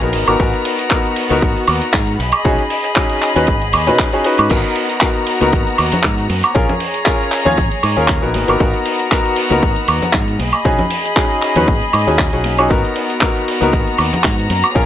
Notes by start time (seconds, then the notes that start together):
Already playing: G#4 C#5 A#5
0.01 A#1 B3 D#4 F#4 A#4, closed hi-hat
0.13 G#1 B3 F#4, open hi-hat
0.26 G#1 B3 D#4 F#4 A#4, closed hi-hat, high woodblock
0.39 G#1 B3 D#4 F#4 A#4, kick, closed hi-hat
0.53 closed hi-hat
0.65 open hi-hat
0.79 closed hi-hat
0.90 B3 D#4 F#4 A#4, kick, clap, closed hi-hat
1.05 closed hi-hat
1.16 open hi-hat
1.30 C#2 B3 D#4 F#4 A#4, closed hi-hat
1.42 G#1, kick, closed hi-hat
1.57 closed hi-hat
1.67 D#2, open hi-hat, high woodblock
1.81 closed hi-hat
1.93 G#2, kick, clap, closed hi-hat
2.07 closed hi-hat
2.19 B1 G#4 D#5 B5, open hi-hat
2.32 closed hi-hat, high woodblock
2.45 B1 C#4 D#4 F#4 G#4, kick, closed hi-hat
2.58 closed hi-hat
2.70 open hi-hat
2.84 closed hi-hat
2.96 C#4 D#4 F#4 G#4, kick, clap, closed hi-hat
3.10 open hi-hat
3.22 clap, open hi-hat
3.36 D#2 C#4 D#4 F#4 B4, closed hi-hat
3.47 G#1, kick, closed hi-hat
3.62 closed hi-hat
3.73 D#2, open hi-hat, high woodblock
3.87 B2 C#4 D#4 F#4 B4, closed hi-hat
3.99 kick, clap, closed hi-hat
4.13 C#4 D#4 F#4 G#4, closed hi-hat
4.24 C#4 D#4 F#4 B4, open hi-hat
4.38 G#2, closed hi-hat, high woodblock
4.50 G#1 B3 D#4 F#4 A#4 A#5, kick, closed hi-hat, crash
4.64 closed hi-hat
4.76 open hi-hat
4.89 closed hi-hat
5.00 B3 D#4 F#4 A#4, kick, clap, closed hi-hat
5.15 closed hi-hat
5.27 open hi-hat
5.41 C#2 B3 D#4 F#4 A#4, closed hi-hat, high conga
5.53 G#1, kick, closed hi-hat
5.67 closed hi-hat
5.78 D#2, open hi-hat, high woodblock
5.92 closed hi-hat, low conga
6.03 G#2, kick, clap, closed hi-hat
6.18 closed hi-hat
6.30 F#2, open hi-hat, high conga
6.43 closed hi-hat, high woodblock
6.55 A#1 C#4 F4 G#4 A#4 C#5 A#5, kick, closed hi-hat
6.69 closed hi-hat, low conga
6.80 open hi-hat
6.94 closed hi-hat
7.06 C#4 F4 G#4 A#4, kick, clap, closed hi-hat
7.21 closed hi-hat
7.32 clap, open hi-hat
7.45 D#2 C#4 F4 G#4 C#5, closed hi-hat, high conga, low conga
7.57 G#1, kick, closed hi-hat
7.71 closed hi-hat
7.83 G#2, open hi-hat, high woodblock
7.96 D#2 C#4 F4 G#4 A#4, closed hi-hat
8.08 kick, clap, closed hi-hat
8.22 A#1 B3 D#4 F#4 A#4, closed hi-hat
8.34 G#1 B3 F#4 A#5, open hi-hat, high conga
8.48 G#1 B3 D#4 F#4 A#4, closed hi-hat, high woodblock
8.60 G#1 B3 D#4 F#4 A#4, kick, closed hi-hat
8.73 closed hi-hat
8.86 open hi-hat
8.99 closed hi-hat
9.11 B3 D#4 F#4 A#4, kick, clap, closed hi-hat
9.25 closed hi-hat
9.36 open hi-hat
9.50 C#2 B3 D#4 F#4 A#4, closed hi-hat, high conga
9.62 G#1, kick, closed hi-hat
9.76 closed hi-hat
9.88 D#2, open hi-hat, high woodblock
10.02 closed hi-hat, low conga
10.13 G#2, kick, clap, closed hi-hat
10.28 closed hi-hat
10.39 B1 G#4 D#5 B5, open hi-hat, high conga
10.53 closed hi-hat, high woodblock
10.65 B1 C#4 D#4 F#4 G#4, kick, closed hi-hat
10.79 closed hi-hat, low conga
10.91 open hi-hat
11.05 closed hi-hat
11.16 C#4 D#4 F#4 G#4, kick, clap, closed hi-hat
11.31 closed hi-hat
11.42 clap, open hi-hat
11.56 D#2 C#4 D#4 F#4 B4, closed hi-hat, high conga, low conga
11.68 G#1, kick, closed hi-hat
11.82 closed hi-hat
11.93 G#2, open hi-hat, high woodblock
12.07 D#2 C#4 D#4 F#4 G#4, closed hi-hat
12.19 kick, clap, closed hi-hat
12.33 B1 C#4 D#4 F#4 G#4, closed hi-hat
12.44 open hi-hat, high conga
12.58 C#4 D#4 F#4 G#4, closed hi-hat, high woodblock
12.70 G#1 B3 D#4 F#4 A#4 A#5, kick, closed hi-hat
12.85 closed hi-hat
12.96 open hi-hat
13.10 closed hi-hat
13.21 B3 D#4 F#4 A#4, kick, clap, closed hi-hat
13.36 closed hi-hat
13.48 open hi-hat
13.61 C#2 B3 D#4 F#4 A#4, closed hi-hat, high conga
13.73 G#1, kick, closed hi-hat
13.87 closed hi-hat
13.98 D#2, open hi-hat, high woodblock
14.13 closed hi-hat, low conga
14.24 G#2, kick, clap, closed hi-hat
14.40 closed hi-hat
14.50 F#2, open hi-hat, high conga
14.64 closed hi-hat, high woodblock
14.75 A#1 C#4 F4 G#4 A#4 C#5, kick, closed hi-hat